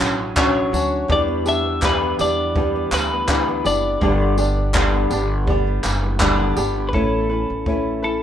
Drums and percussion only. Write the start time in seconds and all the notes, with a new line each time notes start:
0.00 clap, tambourine
0.37 kick, clap
0.74 tambourine
1.10 kick
1.46 tambourine
1.82 kick, clap
2.19 tambourine
2.56 kick
2.92 clap, tambourine
3.28 kick, clap
3.66 tambourine
4.01 kick
4.38 tambourine
4.74 kick, clap
5.11 tambourine
5.48 kick
5.84 clap, tambourine
6.20 kick, clap
6.57 tambourine
6.93 kick
7.66 kick